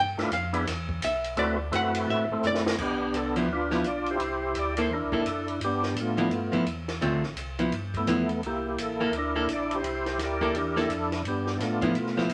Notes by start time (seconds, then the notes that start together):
Already playing: G2
0.00 G5
0.18 G2 A3 D4 E4 F4 B4, snare, ride
0.31 F2 F5, hi-hat pedal, ride
0.53 B3 D4 E4 G#4 B4, ride
0.66 E2, snare, ride
0.89 kick
1.01 B1 E5, hi-hat pedal, ride
1.24 ride
1.37 D2 A3 C4 E4 F#4 B4 D5, ride
1.71 F#2 A3 C4 E4 F#4 B4, hi-hat pedal, ride
1.75 F#5
1.94 ride
2.08 A2 E5
2.29 A2 A3 C4 E4
2.43 F#2 D5, hi-hat pedal
2.55 snare
2.66 snare
2.78 B1 B3 D4 G4, kick, crash
3.13 C2 A4, hi-hat pedal, ride
3.36 F3 B3 E4 B4, ride
3.49 D2 F4
3.53 D4 B4
3.71 F3 B3 E4, snare
3.84 B1 D5, hi-hat pedal, ride
4.06 ride
4.10 E4 G4 C5
4.19 C2, ride
4.55 D2, hi-hat pedal, ride
4.59 D5
4.77 A#3 E4 A4, ride
4.81 C5
4.89 E2 A#4
4.94 D4 E4
5.02 C2
5.12 A#1 A#3 E4 A4, kick
5.18 D4 E4 A4
5.25 F#2, hi-hat pedal, ride
5.48 ride
5.60 G2, ride
5.64 B3 D4 G4
5.83 snare
5.95 A2, hi-hat pedal, ride
6.00 A3 B3 F4
6.17 F3 B3 E4, ride
6.30 G2, ride
6.52 G2 F3 B3 E4, ride
6.65 E2, hi-hat pedal, ride
6.88 snare, ride
7.01 D2 D3 A3 C4 F4, ride
7.13 C2
7.23 A1, snare
7.36 C2, hi-hat pedal, ride
7.59 F3 B3 E4, ride
7.72 G2, ride
7.94 A3 B3 E4, kick, ride
8.07 E2 F3 B3 E4, hi-hat pedal, ride
8.29 ride
8.42 C2, ride
8.46 A#3 E4 G4
8.69 G4
8.77 A1, hi-hat pedal, ride
8.82 A4
9.00 A#3 E4 A4
9.05 A#4
9.12 D2, ride
9.17 D4 E4 A#4
9.35 A#3 E4 A4
9.48 A#1, hi-hat pedal, ride
9.53 D5
9.71 E4, ride
9.75 G4 C5
9.83 C2, ride
10.06 snare, ride
10.18 D2, snare, hi-hat pedal, ride
10.23 G4 A#4 D5
10.41 A#3 E4 A4, kick
10.53 E2 D4 E4, ride
10.59 A#4
10.76 A#3 D4 E4 A4, snare
10.89 F2, hi-hat pedal, ride
11.12 snare, ride
11.24 G2 B3, ride
11.28 D4 G4
11.47 snare
11.57 A2 E4, snare, hi-hat pedal, ride
11.62 A3 B3 F4
11.82 F3 B3 E4, kick, ride
11.94 B2, ride
12.07 snare
12.17 F3 B3 E4, snare
12.29 C3, hi-hat pedal, ride